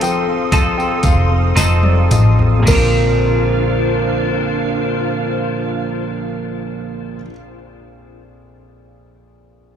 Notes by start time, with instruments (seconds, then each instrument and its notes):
Already playing: fretless electric bass F1, grand piano F3 C4, clean electric guitar F3 C4 D#4 A4, tine electric piano A4, ambient pad A4 F5 C6 D#6
0.01 grand piano F3 G5, closed hi-hat, tambourine
0.27 grand piano C4
0.52 grand piano F3 A5, clean electric guitar C4 D#4 A4, kick, closed hi-hat, tambourine
0.78 grand piano C4 G5, tambourine
1.03 fretless electric bass F1, grand piano F3 F5, kick, closed hi-hat, tambourine
1.30 grand piano C4
1.56 fretless electric bass F1, grand piano F3 D#5, clean electric guitar C4 D#4 A4, snare, closed hi-hat, tambourine
1.83 grand piano C4 D5, high tom
2.11 fretless electric bass A1, grand piano F3 D#5, closed hi-hat, mid tom, tambourine
2.39 grand piano C4, floor tom
2.59 grand piano A#1 F2, clean electric guitar A#2
2.66 fretless electric bass A#1, grand piano C3, clean electric guitar D3 F3, ambient pad D4 F4 A#4 C5 F5, tine electric piano A#4, kick, crash, tambourine
2.70 grand piano A#3 D4, clean electric guitar C4 D4
2.75 grand piano F4, clean electric guitar A#4